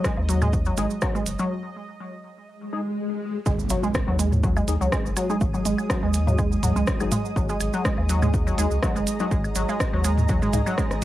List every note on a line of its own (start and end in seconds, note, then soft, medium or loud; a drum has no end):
0.00 1.51 D#5 medium
0.04 0.08 G#3 loud
0.04 kick loud
0.04 cross-stick medium
0.04 cabasa soft
0.17 0.71 D#2 loud
0.17 low woodblock soft
0.29 0.38 F#3 loud
0.29 closed hi-hat medium
0.29 cabasa medium
0.42 0.45 G#3 loud
0.42 mid tom medium
0.42 cabasa soft
0.42 high woodblock medium
0.53 kick loud
0.53 cabasa soft
0.65 0.74 F#3 loud
0.65 cabasa soft
0.77 0.86 G#1 loud
0.77 0.81 G#3 loud
0.77 0.85 G#3 medium
0.77 0.85 D#4 medium
0.77 0.85 G#4 loud
0.77 closed hi-hat medium
0.77 cabasa medium
0.90 cabasa soft
1.02 1.11 F#3 loud
1.02 kick loud
1.02 cross-stick medium
1.02 cabasa soft
1.02 high woodblock medium
1.02 low woodblock soft
1.15 1.18 G#3 medium
1.15 cabasa soft
1.26 1.35 F#1 medium
1.26 closed hi-hat medium
1.26 cabasa medium
1.39 1.47 F#3 loud
1.39 cabasa soft
2.48 swell medium
2.73 2.80 G#3 medium
2.73 2.80 D#4 medium
2.73 2.80 G#4 medium
3.46 3.62 G#1 loud
3.46 3.50 G#3 loud
3.46 11.04 G#3 medium
3.46 kick loud
3.46 impact medium
3.46 cabasa medium
3.59 cabasa soft
3.70 3.79 G#1 medium
3.70 3.79 F#3 loud
3.70 closed hi-hat medium
3.70 cabasa loud
3.70 low woodblock soft
3.77 11.04 G#4 medium
3.83 3.87 G#3 loud
3.83 cabasa soft
3.94 kick loud
3.94 cross-stick loud
3.94 cabasa medium
3.94 high woodblock medium
4.04 4.61 D#2 loud
4.04 4.16 F#3 loud
4.04 7.97 D#6 medium
4.19 4.23 G#3 loud
4.19 closed hi-hat medium
4.19 cabasa loud
4.32 mid tom loud
4.32 cabasa soft
4.43 4.53 F#3 loud
4.43 kick loud
4.43 cabasa soft
4.51 11.04 D#5 medium
4.57 4.60 G#3 loud
4.57 cabasa soft
4.57 high woodblock medium
4.57 low woodblock soft
4.68 4.76 D#2 medium
4.68 4.75 G#3 medium
4.68 4.75 D#4 medium
4.68 4.75 G#4 loud
4.68 closed hi-hat medium
4.68 cabasa medium
4.81 4.88 C#2 medium
4.81 4.89 F#3 loud
4.81 cabasa soft
4.92 4.96 G#3 loud
4.92 kick loud
4.92 cross-stick loud
4.92 cabasa medium
5.05 5.13 F#1 medium
5.05 cabasa soft
5.16 5.26 F#3 loud
5.16 closed hi-hat medium
5.16 cabasa loud
5.16 high woodblock medium
5.30 5.33 G#3 loud
5.30 5.36 G#3 medium
5.30 5.36 D#4 medium
5.30 5.36 G#4 medium
5.30 cabasa soft
5.41 5.57 G#1 loud
5.41 kick loud
5.41 cabasa medium
5.41 low woodblock soft
5.54 5.62 F#3 loud
5.54 cabasa soft
5.65 5.74 G#1 medium
5.65 5.69 G#3 loud
5.65 closed hi-hat medium
5.65 cabasa medium
5.79 cabasa soft
5.79 high woodblock medium
5.90 5.99 F#3 loud
5.90 kick loud
5.90 cross-stick loud
5.90 cabasa soft
6.03 6.57 D#2 loud
6.03 6.06 G#3 loud
6.14 closed hi-hat loud
6.14 cabasa loud
6.27 6.35 F#3 medium
6.27 mid tom loud
6.27 cabasa soft
6.27 low woodblock soft
6.38 6.42 G#3 loud
6.38 kick loud
6.38 cabasa medium
6.38 high woodblock medium
6.52 cabasa soft
6.63 6.71 D#2 medium
6.63 6.72 F#3 loud
6.63 closed hi-hat medium
6.63 mid tom medium
6.63 cabasa loud
6.76 6.83 C#2 medium
6.76 6.79 G#3 loud
6.76 cabasa soft
6.87 kick loud
6.87 cross-stick loud
6.87 cabasa medium
7.00 7.08 F#1 medium
7.00 7.08 F#3 loud
7.00 7.11 G#3 medium
7.00 7.11 D#4 medium
7.00 7.11 G#4 medium
7.00 cabasa soft
7.00 high woodblock medium
7.12 7.16 G#3 loud
7.12 closed hi-hat medium
7.12 mid tom loud
7.12 cabasa loud
7.12 low woodblock soft
7.25 cabasa soft
7.36 7.53 G#1 loud
7.36 7.45 F#3 loud
7.36 kick loud
7.36 cabasa medium
7.49 7.52 G#3 loud
7.49 cabasa soft
7.60 7.69 G#1 medium
7.60 closed hi-hat loud
7.60 cabasa loud
7.60 high woodblock medium
7.73 7.82 F#3 loud
7.73 cabasa soft
7.85 7.89 G#3 loud
7.85 kick loud
7.85 cross-stick loud
7.85 cabasa soft
7.94 8.52 D#2 loud
7.94 11.04 A#5 medium
7.94 low woodblock soft
8.09 8.18 F#3 loud
8.09 closed hi-hat loud
8.09 cabasa medium
8.22 8.26 G#3 loud
8.22 mid tom loud
8.22 cabasa soft
8.22 high woodblock medium
8.34 kick loud
8.34 cabasa medium
8.47 8.55 F#3 loud
8.47 cabasa soft
8.58 8.67 D#2 medium
8.58 8.66 G#3 medium
8.58 8.62 G#3 loud
8.58 8.66 D#4 medium
8.58 8.66 G#4 loud
8.58 closed hi-hat medium
8.58 cabasa medium
8.71 8.79 C#2 medium
8.71 cabasa soft
8.83 8.92 F#3 loud
8.83 kick loud
8.83 cross-stick medium
8.83 cabasa medium
8.83 high woodblock medium
8.83 low woodblock soft
8.96 9.03 F#1 medium
8.96 8.99 G#3 medium
8.96 cabasa soft
9.07 closed hi-hat loud
9.07 cabasa loud
9.20 9.28 F#3 loud
9.20 9.26 G#3 medium
9.20 9.26 D#4 medium
9.20 9.26 G#4 medium
9.20 cabasa soft
9.31 9.48 G#1 medium
9.31 9.35 G#3 loud
9.31 kick loud
9.31 cabasa soft
9.44 cabasa soft
9.44 high woodblock medium
9.55 9.64 G#1 medium
9.55 9.65 F#3 loud
9.55 closed hi-hat medium
9.55 cabasa loud
9.69 9.72 G#3 loud
9.69 cabasa soft
9.69 low woodblock soft
9.80 kick loud
9.80 cross-stick loud
9.80 cabasa soft
9.93 10.41 D#2 loud
9.93 10.01 F#3 loud
10.04 10.08 G#3 loud
10.04 closed hi-hat loud
10.04 cabasa loud
10.04 high woodblock medium
10.17 mid tom medium
10.17 cabasa soft
10.29 10.38 F#3 loud
10.29 kick loud
10.29 cabasa medium
10.42 10.49 G#2 loud
10.42 10.45 G#3 loud
10.42 cabasa soft
10.53 10.62 C#2 loud
10.53 10.61 G#3 medium
10.53 10.61 D#4 medium
10.53 10.61 G#4 medium
10.53 closed hi-hat medium
10.53 mid tom medium
10.53 cabasa loud
10.53 low woodblock soft
10.66 10.74 F#3 loud
10.66 cabasa soft
10.66 high woodblock medium
10.78 10.81 G#3 loud
10.78 kick loud
10.78 cross-stick medium
10.78 cabasa medium
10.91 11.04 G#1 medium
10.91 cross-stick medium
10.91 cabasa soft